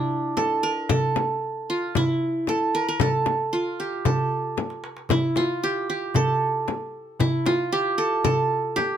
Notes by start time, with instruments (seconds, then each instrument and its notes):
Already playing: qanun D4 E4 G4
0.12 darbuka ka
0.37 qanun A4, darbuka tek, frame drum
0.63 qanun A#4, darbuka ka
0.89 qanun A4, frame drum, darbuka dum
1.16 darbuka tek, frame drum
1.43 darbuka ka
1.70 qanun F4
1.82 darbuka ka
1.95 qanun E4, frame drum, darbuka dum
2.47 qanun A4, darbuka tek, frame drum
2.75 qanun A#4, darbuka ka
2.88 qanun A#4
3.00 qanun A4, frame drum, darbuka dum
3.26 darbuka tek, frame drum
3.53 qanun F4, darbuka ka
3.80 qanun G4
3.93 darbuka ka
4.05 qanun A4, frame drum, darbuka dum
4.19 darbuka ka
4.31 darbuka ka
4.57 darbuka tek, frame drum
4.70 darbuka ka
4.84 darbuka tek
4.97 darbuka ka
5.09 qanun E4, darbuka dum, frame drum
5.36 qanun F4, darbuka tek, frame drum
5.64 qanun G4
5.90 qanun G4
6.01 darbuka ka
6.14 qanun A4, darbuka dum, frame drum
6.28 darbuka ka
6.41 darbuka ka
6.68 darbuka tek, frame drum
7.20 qanun E4, darbuka dum, frame drum
7.46 qanun F4, darbuka tek, frame drum
7.72 qanun G4
7.98 qanun A4
8.12 darbuka ka
8.24 qanun A4, darbuka dum, frame drum
8.37 darbuka ka
8.51 darbuka ka
8.76 qanun G4, darbuka tek, frame drum